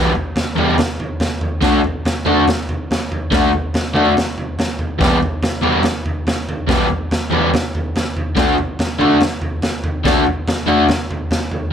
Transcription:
Already playing: overdriven electric guitar B2 E3 G3 B3 G4
0.15 floor tom
0.36 snare, floor tom
0.55 overdriven electric guitar E2 B2 E3 G3 B3 G4, floor tom
0.78 snare, floor tom
1.00 floor tom
1.20 snare, floor tom
1.41 floor tom
1.61 overdriven electric guitar D3 A3 D4 F#4, kick, snare, floor tom
1.84 floor tom
2.05 snare, floor tom
2.26 overdriven electric guitar D3 A3 D4 F#4, floor tom
2.48 snare, floor tom
2.69 floor tom
2.91 snare, floor tom
3.12 floor tom
3.31 overdriven electric guitar D3 A3 D4 F#4, kick, snare, floor tom
3.53 floor tom
3.74 snare, floor tom
3.94 overdriven electric guitar D3 A3 D4 F#4, floor tom
4.17 snare, floor tom
4.38 floor tom
4.59 snare, floor tom
4.79 floor tom
4.99 overdriven electric guitar E2 B2 E3 G3 B3 G4, kick, snare, floor tom
5.23 floor tom
5.43 snare, floor tom
5.62 overdriven electric guitar E2 B2 E3 G3 B3 G4, floor tom
5.83 snare, floor tom
6.06 floor tom
6.27 snare, floor tom
6.49 floor tom
6.67 overdriven electric guitar E2 B2 E3 G3 B3 G4, kick, snare, floor tom
6.90 floor tom
7.11 snare, floor tom
7.30 overdriven electric guitar E2 B2 E3 G3 B3 G4, floor tom
7.54 snare, floor tom
7.75 floor tom
7.96 snare, floor tom
8.17 floor tom
8.35 overdriven electric guitar D3 A3 D4 F#4, kick, snare, floor tom
8.58 floor tom
8.79 snare, floor tom
8.99 overdriven electric guitar D3 A3 D4 F#4, floor tom
9.21 snare, floor tom
9.42 floor tom
9.62 snare, floor tom
9.84 floor tom
10.04 overdriven electric guitar D3 A3 D4 F#4, kick, snare, floor tom
10.26 floor tom
10.48 snare, floor tom
10.66 overdriven electric guitar D3 A3 D4 F#4, floor tom
10.89 snare, floor tom
11.11 floor tom
11.31 snare, floor tom
11.51 floor tom

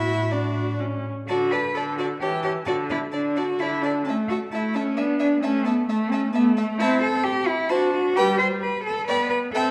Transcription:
Already playing: cello A2, violin E4 E5, viola F#4
0.31 violin D4 D5, viola F#4
0.80 viola C#4
1.28 viola D3, cello F#4, violin D5 A5
1.51 cello B4, violin D5 A5
1.74 viola D3, cello A4, violin D5 A5
1.97 cello F#4, violin D5 A5
2.21 viola E3, cello G4, violin C#5 A5
2.43 cello G4, violin C#5 A5
2.65 viola D3, cello F#4, violin D5 A5
2.90 cello E4, violin D5 A5
3.12 viola D3, cello D4, violin D5 A5
3.36 cello F#4, violin D5 A5
3.59 viola D3, cello E4, violin D5 A5
3.82 cello D4, violin D5 A5
4.05 viola A3, cello C#4, violin E5 A5
4.28 cello F#4, violin E5 A5
4.52 viola A3, cello E4, violin E5 A5
4.74 cello C#4, violin E5 A5
4.97 viola B3, cello D4, violin E5 G#5
5.19 cello D4, violin E5 G#5
5.42 viola A3, cello C#4, violin E5 A5
5.65 cello B3, violin E5 A5
5.88 viola A3, cello A3, violin E5 A5
6.11 cello C#4, violin E5 A5
6.33 viola A3, cello B3, violin E5 A5
6.56 cello A3, violin E5 A5
6.79 viola C4, cello E4, violin E5 A5
7.02 cello A4
7.24 cello G4
7.47 cello E4
7.69 viola D4, cello F#4, violin C5 A5
7.93 cello F#4
8.16 viola G3, cello G4, violin B4 G5
8.39 cello C5
8.61 cello B4
8.84 cello A4
9.07 viola B3, cello B4, violin D5 G5
9.30 cello B4
9.52 viola C4, cello A4, violin E5 G5

